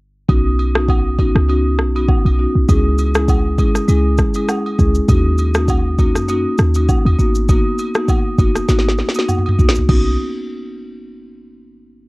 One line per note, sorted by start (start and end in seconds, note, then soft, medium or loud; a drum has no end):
0.28 1.31 B1 loud
0.28 0.71 B3 medium
0.28 0.71 C#4 medium
0.28 0.71 D#4 medium
0.28 0.71 F#4 loud
0.28 kick loud
0.28 high agogo medium
0.59 high agogo medium
0.75 0.96 B3 medium
0.75 0.96 C#4 medium
0.75 0.96 D#4 medium
0.75 0.96 F#4 medium
0.75 cross-stick loud
0.88 kick loud
0.88 high agogo medium
0.88 low woodblock medium
1.18 1.41 B3 medium
1.18 1.41 C#4 medium
1.18 1.41 D#4 medium
1.18 1.41 F#4 medium
1.18 kick medium
1.18 high agogo medium
1.35 1.80 C#2 loud
1.35 cross-stick medium
1.48 1.91 B3 medium
1.48 1.91 C#4 medium
1.48 1.91 D#4 medium
1.48 1.91 F#4 loud
1.48 high agogo medium
1.79 2.12 B1 loud
1.79 cross-stick medium
1.95 2.16 B3 medium
1.95 2.16 C#4 medium
1.95 2.16 D#4 medium
1.95 2.16 F#4 medium
1.95 high agogo medium
2.09 kick loud
2.09 low woodblock medium
2.25 2.47 B1 medium
2.25 high agogo medium
2.39 2.61 B3 medium
2.39 2.61 C#4 medium
2.39 2.61 D#4 medium
2.39 2.61 F#4 medium
2.55 2.65 B1 medium
2.68 3.60 C#2 loud
2.68 3.11 G#3 medium
2.68 3.11 C#4 medium
2.68 3.11 E4 medium
2.68 3.11 G#4 loud
2.68 kick loud
2.68 high agogo medium
2.68 shaker medium
2.98 high agogo medium
2.98 shaker medium
3.15 3.36 G#3 medium
3.15 3.36 C#4 medium
3.15 3.36 E4 medium
3.15 3.36 G#4 medium
3.15 cross-stick loud
3.15 shaker medium
3.28 kick loud
3.28 high agogo medium
3.28 low woodblock medium
3.28 shaker medium
3.59 3.80 G#1 medium
3.59 3.81 G#3 medium
3.59 3.81 C#4 medium
3.59 3.81 E4 medium
3.59 3.81 G#4 medium
3.59 kick medium
3.59 high agogo medium
3.59 shaker soft
3.75 cross-stick medium
3.75 shaker medium
3.89 4.22 C#2 loud
3.89 4.31 G#3 medium
3.89 4.31 C#4 medium
3.89 4.31 E4 medium
3.89 4.32 G#4 medium
3.89 high agogo medium
3.89 shaker medium
4.18 kick medium
4.18 cross-stick medium
4.18 shaker medium
4.34 4.56 G#3 medium
4.34 4.56 C#4 medium
4.34 4.56 E4 medium
4.34 4.56 G#4 medium
4.34 high agogo medium
4.34 shaker medium
4.49 cross-stick medium
4.49 low woodblock medium
4.49 shaker medium
4.66 high agogo medium
4.79 5.00 C#2 medium
4.79 5.01 G#3 medium
4.79 5.01 C#4 medium
4.79 5.01 E4 medium
4.79 5.01 G#4 medium
4.79 kick loud
4.79 shaker medium
4.95 shaker medium
5.09 6.17 D#2 loud
5.09 5.51 A#3 medium
5.09 5.51 C#4 medium
5.09 5.51 D#4 medium
5.09 5.51 F#4 loud
5.09 kick loud
5.09 high agogo medium
5.09 shaker medium
5.38 high agogo medium
5.38 shaker medium
5.55 5.76 A#3 medium
5.55 5.76 C#4 medium
5.55 5.76 D#4 medium
5.55 5.76 F#4 medium
5.55 cross-stick loud
5.55 shaker medium
5.68 kick medium
5.68 high agogo medium
5.68 low woodblock medium
5.68 shaker medium
5.99 6.21 A#3 medium
5.99 6.21 C#4 medium
5.99 6.21 D#4 medium
5.99 6.21 F#4 medium
5.99 kick medium
5.99 high agogo medium
5.99 shaker soft
6.15 6.46 F#2 medium
6.15 cross-stick medium
6.15 shaker medium
6.28 6.71 A#3 medium
6.28 6.71 C#4 medium
6.28 6.71 D#4 medium
6.28 6.71 F#4 loud
6.28 high agogo medium
6.28 shaker medium
6.58 6.92 D#2 medium
6.58 cross-stick medium
6.58 shaker medium
6.74 6.96 A#3 medium
6.74 6.96 C#4 medium
6.74 6.96 D#4 medium
6.74 6.96 F#4 medium
6.74 high agogo medium
6.74 shaker medium
6.88 kick medium
6.88 low woodblock medium
6.88 shaker medium
7.05 7.15 D#2 medium
7.05 high agogo medium
7.19 7.61 G#1 loud
7.19 7.41 A#3 medium
7.19 7.41 B3 medium
7.19 7.41 D#4 medium
7.19 7.41 F#4 medium
7.19 shaker medium
7.35 shaker medium
7.48 7.91 A#3 medium
7.48 7.91 B3 medium
7.48 7.91 D#4 medium
7.48 7.91 F#4 loud
7.48 kick loud
7.48 high agogo medium
7.48 shaker medium
7.78 high agogo medium
7.78 shaker medium
7.94 8.16 A#3 medium
7.94 8.16 B3 medium
7.94 8.16 D#4 medium
7.94 8.16 F#4 medium
7.94 cross-stick loud
7.94 shaker medium
8.08 kick loud
8.08 high agogo medium
8.08 low woodblock medium
8.08 shaker medium
8.38 8.60 F#1 medium
8.38 8.61 A#3 medium
8.38 8.61 B3 medium
8.38 8.61 D#4 medium
8.38 8.61 F#4 medium
8.38 kick medium
8.38 high agogo medium
8.38 shaker soft
8.55 cross-stick medium
8.55 shaker medium
8.68 9.02 G#1 loud
8.68 9.11 A#3 medium
8.68 9.11 B3 medium
8.68 9.11 D#4 medium
8.68 9.11 F#4 loud
8.68 snare medium
8.68 high agogo medium
8.68 shaker medium
8.79 snare medium
8.88 snare medium
8.98 snare medium
8.98 shaker medium
9.09 snare medium
9.14 9.36 A#3 medium
9.14 9.36 B3 medium
9.14 9.36 D#4 medium
9.14 9.36 F#4 medium
9.14 high agogo medium
9.14 shaker medium
9.19 snare medium
9.28 mid tom medium
9.28 low woodblock medium
9.28 shaker medium
9.38 mid tom medium
9.46 mid tom medium
9.46 high agogo medium
9.59 9.80 A#1 medium
9.59 9.81 A#3 medium
9.59 9.81 B3 medium
9.59 9.81 D#4 medium
9.59 9.81 F#4 medium
9.59 floor tom medium
9.59 shaker medium
9.69 snare loud
9.75 floor tom medium
9.75 shaker medium
9.88 10.17 B1 loud
9.88 10.11 B3 medium
9.88 10.11 C#4 medium
9.88 10.12 D#4 medium
9.88 10.12 F#4 medium
9.88 kick loud
9.88 crash medium
9.88 high agogo medium